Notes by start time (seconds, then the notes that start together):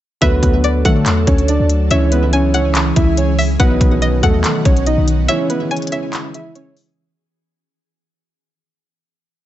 0.21 D2 D3 F#3 A3 B3 D4 F#4 A4 B4 E5, kick, closed hi-hat
0.43 D2, kick, closed hi-hat
0.53 D3 F#3 A3 F#4
0.64 D5, closed hi-hat
0.84 D3 F#3 A3 F#4 A4 F#5, kick, closed hi-hat
1.06 E2, clap, closed hi-hat
1.27 D2 C#4 C#5, kick, closed hi-hat
1.38 closed hi-hat
1.48 D4 D5, closed hi-hat
1.60 D2
1.70 closed hi-hat
1.90 C#2 C#3 E3 G#3 C#4 E4 G#4 C#5 E5, closed hi-hat
2.12 B3 B4, closed hi-hat
2.23 C#3 E3 G#3 E4
2.33 C#4 C#5 G#5, closed hi-hat
2.54 C#3 E3 G#3 C#4 E4 C#5 F#5, closed hi-hat
2.75 clap, closed hi-hat
2.96 C#2 E4 E5, kick, closed hi-hat
3.17 C#4 C#5, closed hi-hat
3.39 E5, open hi-hat
3.59 B1 B2 D#3 F#3 B3 D#4 F#4 B4 F#5, kick, closed hi-hat
3.81 B1, kick, closed hi-hat
3.91 B2 D#3 F#3 D#4
4.02 D#5, closed hi-hat
4.21 D#2 B2 D#3 F#3 A3 D#4 A4 F#5, kick, closed hi-hat
4.44 clap, closed hi-hat
4.65 B1 C#4 C#5, kick, closed hi-hat
4.77 closed hi-hat
4.87 D#4 D#5, closed hi-hat
4.98 B1
5.08 closed hi-hat
5.28 C#3 E3 G#3 C#4 E4 G#4 C#5 E5, closed hi-hat
5.50 B3 B4, closed hi-hat
5.60 C#3 E3 G#3 E4
5.71 C#4 C#5 G#5, closed hi-hat
5.77 closed hi-hat
5.82 closed hi-hat
5.87 closed hi-hat
5.91 C#3 E3 G#3 C#4 E4 C#5 E5, closed hi-hat
6.13 clap, closed hi-hat
6.34 E4 E5, closed hi-hat
6.55 C#4 C#5, closed hi-hat
6.77 open hi-hat